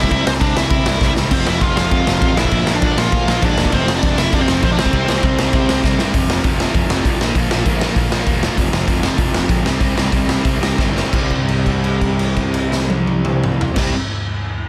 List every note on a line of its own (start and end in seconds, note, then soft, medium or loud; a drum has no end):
0.00 0.11 C3 loud
0.00 0.10 G3 loud
0.00 0.10 C4 loud
0.00 0.10 E5 loud
0.00 kick medium
0.11 0.22 C2 loud
0.11 0.25 C3 medium
0.11 0.26 G3 loud
0.11 0.27 C4 loud
0.11 0.25 E4 medium
0.11 0.27 E5 loud
0.11 kick loud
0.11 crash medium
0.26 0.37 C2 medium
0.26 0.43 C3 medium
0.26 0.42 G3 loud
0.26 0.31 C4 medium
0.26 0.41 C4 loud
0.26 0.32 C5 medium
0.26 snare loud
0.40 0.52 C2 loud
0.40 0.55 C3 medium
0.40 0.56 G3 loud
0.40 0.56 C4 loud
0.40 0.55 D4 medium
0.40 0.57 D5 loud
0.40 kick loud
0.40 crash medium
0.56 0.67 C2 loud
0.56 0.71 C3 loud
0.56 0.70 G3 medium
0.56 0.70 C4 medium
0.56 1.12 E4 medium
0.56 1.13 E5 loud
0.56 snare loud
0.70 0.82 C3 loud
0.70 0.84 C3 medium
0.70 0.85 G3 loud
0.70 0.86 C4 loud
0.70 kick loud
0.70 crash medium
0.86 0.97 C2 loud
0.86 1.01 C3 medium
0.86 1.00 G3 medium
0.86 0.99 C4 medium
0.86 snare loud
1.00 1.12 C2 loud
1.00 1.15 C3 medium
1.00 1.16 G3 medium
1.00 1.16 C4 medium
1.00 kick loud
1.00 snare medium
1.16 1.27 C2 medium
1.16 1.30 C3 medium
1.16 1.31 G3 loud
1.16 1.31 C4 loud
1.16 snare medium
1.30 1.42 F1 loud
1.30 1.46 F2 loud
1.30 1.45 C3 loud
1.30 1.45 F3 loud
1.30 1.46 C4 medium
1.30 1.48 C5 loud
1.30 kick loud
1.30 crash loud
1.45 1.57 F1 loud
1.45 1.59 F2 medium
1.45 1.60 C3 medium
1.45 1.62 F3 loud
1.45 1.61 E4 medium
1.45 1.63 E5 medium
1.45 snare loud
1.60 1.73 F1 medium
1.60 1.76 F2 loud
1.60 1.76 C3 loud
1.60 1.76 F3 loud
1.60 1.76 F4 medium
1.60 1.77 F5 loud
1.60 kick loud
1.60 crash medium
1.75 1.87 F1 loud
1.75 1.90 F2 medium
1.75 1.91 C3 medium
1.75 1.92 F3 medium
1.75 2.33 F4 medium
1.75 2.39 F5 loud
1.75 snare loud
1.91 2.02 F2 loud
1.91 2.06 F2 loud
1.91 2.06 C3 loud
1.91 2.06 F3 loud
1.91 kick loud
1.91 crash medium
2.06 2.18 F1 loud
2.06 2.19 F2 medium
2.06 2.21 C3 medium
2.06 2.21 F3 loud
2.06 snare loud
2.20 2.33 A1 loud
2.20 2.35 F2 medium
2.20 2.36 C3 medium
2.20 2.36 F3 medium
2.20 kick loud
2.20 crash medium
2.36 2.48 A#1 loud
2.36 2.51 A#2 medium
2.36 2.51 F3 loud
2.36 2.50 A#3 loud
2.36 2.72 E4 medium
2.36 2.77 E5 loud
2.36 snare loud
2.44 kick medium
2.51 2.63 A#1 loud
2.51 2.65 A#2 medium
2.51 2.67 F3 medium
2.51 2.66 A#3 loud
2.51 kick loud
2.51 crash medium
2.66 2.78 A#1 medium
2.66 2.81 A#2 loud
2.66 2.81 F3 loud
2.66 2.80 A#3 medium
2.66 snare loud
2.75 2.96 D4 medium
2.75 2.99 D5 medium
2.81 2.93 A#1 loud
2.81 2.94 A#2 medium
2.81 2.95 F3 medium
2.81 2.96 A#3 loud
2.81 kick loud
2.81 crash medium
2.96 3.08 A#1 loud
2.96 3.12 A#2 loud
2.96 3.12 F3 loud
2.96 3.11 A#3 loud
2.96 3.40 F4 medium
2.96 3.45 F5 loud
2.96 snare loud
3.12 3.23 A#2 loud
3.12 3.26 A#2 medium
3.12 3.27 F3 loud
3.12 3.28 A#3 loud
3.12 kick loud
3.12 crash medium
3.27 3.38 A#1 loud
3.27 3.42 A#2 medium
3.27 3.41 F3 medium
3.27 3.41 A#3 medium
3.27 snare loud
3.42 3.53 A#1 medium
3.42 3.57 A#2 medium
3.42 3.58 F3 medium
3.42 3.58 A#3 loud
3.42 3.72 D4 medium
3.42 kick loud
3.42 crash medium
3.46 3.73 D5 loud
3.56 3.68 E1 medium
3.56 3.72 A#2 medium
3.56 3.73 F3 loud
3.56 3.73 A#3 loud
3.56 snare loud
3.65 kick medium
3.72 3.84 F1 loud
3.72 3.88 F2 medium
3.72 3.87 C3 loud
3.72 3.87 F3 loud
3.72 3.94 C4 medium
3.72 3.95 C5 medium
3.72 kick loud
3.72 crash medium
3.87 3.98 F1 medium
3.87 4.02 F2 medium
3.87 4.03 C3 medium
3.87 4.03 F3 loud
3.87 snare loud
3.95 4.16 D4 medium
3.95 4.17 D5 medium
4.03 4.14 F1 loud
4.03 4.18 F2 medium
4.03 4.17 C3 loud
4.03 4.17 F3 loud
4.03 kick loud
4.03 crash medium
4.17 4.29 F1 loud
4.17 4.31 F2 medium
4.17 4.32 C3 loud
4.17 4.33 F3 loud
4.17 4.32 E4 medium
4.17 4.34 E5 loud
4.17 snare loud
4.32 4.44 F2 loud
4.32 4.48 F2 loud
4.32 4.48 C3 loud
4.32 4.47 F3 loud
4.32 4.40 D4 medium
4.32 4.41 D5 medium
4.32 kick loud
4.32 crash medium
4.40 4.62 C4 medium
4.40 4.64 C5 medium
4.48 4.59 F1 loud
4.48 4.61 F2 medium
4.48 4.62 C3 medium
4.48 4.62 F3 loud
4.48 snare loud
4.62 4.74 A#1 medium
4.62 4.77 F2 medium
4.62 4.75 C3 medium
4.62 4.77 F3 loud
4.62 4.71 C4 medium
4.62 4.72 C5 medium
4.62 kick loud
4.62 crash medium
4.71 4.78 D4 medium
4.71 4.79 D5 medium
4.77 4.89 C2 medium
4.77 4.92 C3 loud
4.77 4.91 G3 loud
4.77 4.91 C4 loud
4.77 5.80 C4 medium
4.77 5.81 C5 medium
4.77 snare loud
4.86 kick medium
4.92 5.04 C2 loud
4.92 5.07 C3 medium
4.92 5.08 G3 loud
4.92 5.08 C4 loud
4.92 kick loud
4.92 crash medium
5.08 5.19 C2 medium
5.08 5.23 C3 loud
5.08 5.23 G3 loud
5.08 5.22 C4 medium
5.08 snare loud
5.23 5.34 C2 loud
5.23 5.37 C3 loud
5.23 5.38 G3 medium
5.23 5.38 C4 loud
5.23 kick loud
5.23 crash medium
5.38 5.50 C2 loud
5.38 5.54 C3 medium
5.38 5.53 G3 loud
5.38 5.52 C4 loud
5.38 snare loud
5.53 5.64 C3 loud
5.53 5.67 C3 loud
5.53 5.68 G3 loud
5.53 5.68 C4 loud
5.53 kick loud
5.53 crash medium
5.68 5.80 C2 medium
5.68 5.84 C3 medium
5.68 5.83 G3 medium
5.68 5.82 C4 medium
5.68 snare loud
5.83 5.94 C2 medium
5.83 5.97 C3 medium
5.83 5.98 G3 medium
5.83 5.99 C4 loud
5.83 kick loud
5.83 snare medium
5.99 6.10 G2 medium
5.99 6.13 C3 medium
5.99 6.14 G3 medium
5.99 6.14 C4 loud
5.99 snare loud
6.14 6.24 F1 medium
6.14 6.29 F2 medium
6.14 6.28 C3 loud
6.14 6.28 F3 medium
6.14 kick loud
6.14 open hi-hat medium
6.28 6.39 F1 medium
6.28 6.42 F2 medium
6.28 6.43 C3 medium
6.28 6.44 F3 medium
6.28 snare loud
6.43 6.65 F1 medium
6.43 6.59 F2 medium
6.43 6.58 C3 loud
6.43 6.58 F3 loud
6.43 kick loud
6.43 open hi-hat medium
6.58 6.73 F2 medium
6.58 6.74 C3 medium
6.58 6.76 F3 loud
6.58 snare loud
6.74 6.85 F1 medium
6.74 6.90 F2 medium
6.74 6.90 C3 medium
6.74 6.90 F3 medium
6.74 kick loud
6.74 open hi-hat medium
6.89 6.99 F1 medium
6.89 7.04 F2 medium
6.89 7.05 C3 medium
6.89 7.06 F3 medium
6.89 snare loud
7.05 7.15 C2 medium
7.05 7.19 F2 medium
7.05 7.20 C3 medium
7.05 7.21 F3 loud
7.05 kick loud
7.05 open hi-hat medium
7.21 7.31 A#1 medium
7.21 7.36 A#2 loud
7.21 7.36 F3 medium
7.21 7.34 A#3 loud
7.21 snare loud
7.35 7.46 A#1 medium
7.35 7.49 A#2 medium
7.35 7.51 F3 medium
7.35 7.51 A#3 medium
7.35 kick loud
7.35 open hi-hat medium
7.51 7.61 A#1 medium
7.51 7.67 A#2 medium
7.51 7.66 F3 medium
7.51 7.65 A#3 loud
7.51 snare loud
7.66 7.86 A#1 medium
7.66 7.80 A#2 medium
7.66 7.81 F3 medium
7.66 7.82 A#3 medium
7.66 kick loud
7.66 open hi-hat medium
7.81 7.97 A#2 medium
7.81 7.96 F3 loud
7.81 7.96 A#3 loud
7.81 snare loud
7.96 8.06 A#1 medium
7.96 8.10 A#2 medium
7.96 8.11 F3 medium
7.96 8.12 A#3 medium
7.96 kick loud
7.96 open hi-hat medium
8.11 8.21 A#1 medium
8.11 8.27 A#2 medium
8.11 8.26 F3 medium
8.11 8.25 A#3 medium
8.11 snare loud
8.26 8.47 E1 medium
8.26 8.41 A#2 medium
8.26 8.42 F3 medium
8.26 8.42 A#3 loud
8.26 kick loud
8.26 open hi-hat medium
8.42 8.56 A#2 medium
8.42 8.56 F3 medium
8.42 8.57 A#3 medium
8.42 snare loud
8.57 8.67 F1 loud
8.57 8.73 F2 medium
8.57 8.72 C3 loud
8.57 8.71 F3 loud
8.57 kick loud
8.57 open hi-hat medium
8.72 8.82 F1 medium
8.72 8.86 F2 medium
8.72 8.87 C3 medium
8.72 8.88 F3 loud
8.72 snare loud
8.87 9.08 F1 medium
8.87 9.04 F2 medium
8.87 9.03 C3 medium
8.87 9.02 F3 loud
8.87 kick loud
8.87 open hi-hat medium
9.03 9.16 F2 medium
9.03 9.17 C3 loud
9.03 9.17 F3 loud
9.03 snare loud
9.17 9.28 F1 medium
9.17 9.33 F2 medium
9.17 9.33 C3 medium
9.17 9.32 F3 medium
9.17 kick loud
9.17 open hi-hat medium
9.33 9.44 F1 medium
9.33 9.48 F2 medium
9.33 9.48 C3 medium
9.33 9.49 F3 medium
9.33 snare loud
9.49 9.59 A#1 medium
9.49 9.63 F2 loud
9.49 9.63 C3 loud
9.49 9.64 F3 loud
9.49 kick loud
9.49 open hi-hat medium
9.65 9.75 C2 medium
9.65 9.80 C3 medium
9.65 9.80 G3 loud
9.65 9.79 C4 loud
9.65 snare loud
9.80 9.91 C2 loud
9.80 9.94 C3 medium
9.80 9.95 G3 medium
9.80 9.95 C4 loud
9.80 kick loud
9.80 open hi-hat medium
9.95 10.08 C2 medium
9.95 10.12 C3 medium
9.95 10.12 G3 medium
9.95 10.11 C4 medium
9.95 snare loud
10.12 10.34 C2 medium
10.12 10.26 C3 medium
10.12 10.27 G3 medium
10.12 10.28 C4 medium
10.12 kick loud
10.12 open hi-hat medium
10.27 10.44 C3 medium
10.27 10.43 G3 medium
10.27 10.43 C4 medium
10.27 snare loud
10.44 10.56 C2 medium
10.44 10.59 C3 medium
10.44 10.60 G3 medium
10.44 10.61 C4 medium
10.44 kick loud
10.44 open hi-hat medium
10.61 10.73 C2 medium
10.61 10.78 C3 medium
10.61 10.77 G3 medium
10.61 10.76 C4 medium
10.61 snare loud
10.78 11.02 G1 medium
10.78 10.94 C3 medium
10.78 10.95 G3 medium
10.78 10.96 C4 loud
10.78 kick loud
10.78 snare medium
10.95 11.10 C3 medium
10.95 11.13 G3 medium
10.95 11.13 C4 medium
10.95 snare medium
11.11 13.69 C2 medium
11.11 13.76 C3 medium
11.11 13.79 G3 loud
11.11 kick loud
11.11 crash medium
11.15 13.80 C4 medium
11.30 kick medium
11.30 crash soft
11.48 crash soft
11.66 kick medium
11.66 crash soft
11.84 crash soft
12.01 kick medium
12.01 crash soft
12.19 crash soft
12.36 kick medium
12.36 crash soft
12.54 crash medium
12.72 snare medium
12.90 high tom medium
13.07 high tom medium
13.25 mid tom medium
13.44 mid tom loud
13.61 floor tom loud
13.76 13.92 C2 medium
13.76 13.93 C3 medium
13.76 13.94 G3 loud
13.76 kick loud
13.76 snare medium
13.76 crash loud
13.80 13.95 C4 medium